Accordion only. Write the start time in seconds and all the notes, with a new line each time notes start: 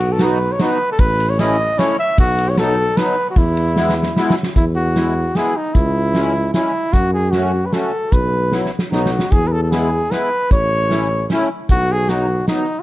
0.19 B3 D#4 F#4
0.60 B3 D#4 F#4
1.38 A3 C#4 E4
1.77 A3 C#4 E4
2.58 F#3 B3 D#4
2.97 F#3 B3 D#4
3.76 G#3 B3 E4
4.16 G#3 B3 E4
4.95 G#3 B3 E4
5.35 G#3 B3 E4
6.14 G#3 C#4 E4
6.54 G#3 C#4 E4
7.34 A3 C#4 F#4
7.74 A3 C#4 F#4
8.52 F#3 B3 E4
8.91 F#3 B3 D#4
9.71 G#3 B3 E4
10.10 G#3 B3 E4
10.90 A3 C#4 E4
11.30 A3 C#4 E4
12.08 F#3 B3 D#4
12.48 F#3 B3 D#4